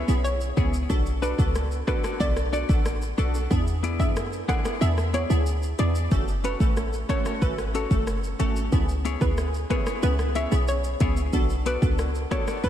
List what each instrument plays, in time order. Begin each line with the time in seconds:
Already playing: clean electric guitar B3 E4 G#4 C#5
0.08 808-style bass B1, synth stab B3 C#4 E4 G#4, shaker
0.24 synth pluck C#5, shaker
0.41 shaker
0.57 808-style bass C#2, clean electric guitar B3 E4 G#4 C#5, synth stab B3 C#4 E4 G#4, kick, shaker
0.74 shaker
0.90 808-style bass B1, synth stab B3 D4 F#4 A4, kick, shaker
1.06 shaker
1.22 clean electric guitar D4 F#4 A4 D5, synth pluck B4, shaker
1.38 808-style bass C#2, synth stab B3 D4 F#4 A4, kick, shaker
1.55 cross-stick, shaker
1.71 shaker
1.87 synth stab B3 D4 F#4 A4, clean electric guitar D4 F#4 A4 D5, synth pluck B4, kick, cross-stick, shaker
2.04 clean electric guitar D4 F#4 A4 D5, cross-stick, shaker
2.20 808-style bass B1, synth stab B3 D4 F#4 A4, synth pluck D5, kick, shaker
2.37 cross-stick, shaker
2.53 clean electric guitar D4 F#4 A4 D5, synth pluck D5, shaker
2.69 808-style bass A1, synth stab B3 D4 F#4 A4, kick, shaker
2.86 cross-stick, shaker
3.02 shaker
3.18 808-style bass B1, synth stab B3 D4 F#4 A4, clean electric guitar D4 F#4 A4 D5, shaker
3.35 shaker
3.50 808-style bass E2, synth stab B3 D4 E4 G#4, kick, shaker
3.67 shaker
3.83 clean electric guitar B3 E4 G#4 D5, closed hi-hat, shaker
3.99 808-style bass F#2, synth stab B3 D4 E4 G#4, synth pluck E5, kick, shaker
4.16 cross-stick, shaker
4.33 shaker
4.48 clean electric guitar B3 E4 G#4 D5, synth stab B3 D4 E4 G#4, synth pluck F#5, kick, cross-stick, closed hi-hat, shaker
4.65 clean electric guitar B3 E4 G#4 D5, cross-stick, shaker
4.81 808-style bass E2, synth stab B3 D4 E4 G#4, synth pluck E5, shaker
4.98 cross-stick, shaker
5.14 clean electric guitar B3 E4 G#4 D5, synth pluck C#5, closed hi-hat, shaker
5.30 808-style bass D2, synth stab B3 D4 E4 G#4, shaker
5.46 shaker
5.63 shaker
5.79 808-style bass E2, clean electric guitar B3 E4 G#4 D5, synth stab B3 D4 E4 G#4, synth pluck D5, closed hi-hat, shaker
5.95 shaker
6.11 808-style bass F#1, synth stab A3 C#4 F#4 A4, kick, shaker
6.28 shaker
6.44 clean electric guitar C#4 F#4 A4 C#5, synth pluck B4, closed hi-hat, shaker
6.60 808-style bass A1, synth stab A3 C#4 F#4 A4, kick, shaker
6.77 cross-stick, shaker
6.93 shaker
7.09 synth stab A3 C#4 F#4 A4, clean electric guitar C#4 F#4 A4 C#5, synth pluck C#5, kick, cross-stick, closed hi-hat, shaker
7.26 clean electric guitar C#4 F#4 A4 C#5, cross-stick, shaker
7.42 808-style bass G#1, synth stab A3 C#4 F#4 A4, synth pluck B4, kick, shaker
7.58 cross-stick, shaker
7.74 clean electric guitar C#4 F#4 A4 C#5, synth pluck A4, closed hi-hat, shaker
7.91 808-style bass F#1, synth stab A3 C#4 F#4 A4, kick, shaker
8.07 cross-stick, shaker
8.24 shaker
8.39 808-style bass G#1, synth stab A3 C#4 F#4 A4, clean electric guitar C#4 F#4 A4 C#5, closed hi-hat, shaker
8.56 shaker
8.72 808-style bass C#2, synth stab B3 C#4 E4 G#4, kick, shaker
8.89 shaker
9.05 clean electric guitar B3 E4 G#4 C#5, closed hi-hat, shaker
9.21 808-style bass D2, synth stab B3 C#4 E4 G#4, synth pluck B4, kick, shaker
9.38 cross-stick, shaker
9.54 shaker
9.70 synth stab B3 C#4 E4 G#4, clean electric guitar B3 E4 G#4 C#5, synth pluck B4, kick, cross-stick, closed hi-hat, shaker
9.86 clean electric guitar B3 E4 G#4 C#5, cross-stick, shaker
10.02 808-style bass C#2, synth stab B3 C#4 E4 G#4, synth pluck B4, shaker
10.19 cross-stick, shaker
10.35 clean electric guitar B3 E4 G#4 C#5, synth pluck E5, closed hi-hat, shaker
10.51 808-style bass B1, synth stab B3 C#4 E4 G#4, shaker
10.68 synth pluck C#5, shaker
10.84 shaker
11.00 808-style bass C#2, synth stab B3 C#4 E4 G#4, clean electric guitar B3 E4 G#4 C#5, kick, closed hi-hat, shaker
11.17 shaker
11.33 808-style bass B1, synth stab B3 D4 F#4 A4, kick, shaker
11.50 shaker
11.66 clean electric guitar B3 F#4 A4 D5, synth pluck B4, closed hi-hat, shaker
11.82 808-style bass C#2, synth stab B3 D4 F#4 A4, kick, shaker
11.99 cross-stick, shaker
12.15 shaker
12.31 synth stab B3 D4 F#4 A4, clean electric guitar B3 F#4 A4 D5, synth pluck C#5, kick, cross-stick, closed hi-hat, shaker
12.47 clean electric guitar B3 F#4 A4 D5, cross-stick, shaker
12.63 808-style bass B1, synth stab B3 D4 F#4 A4, synth pluck B4, kick, shaker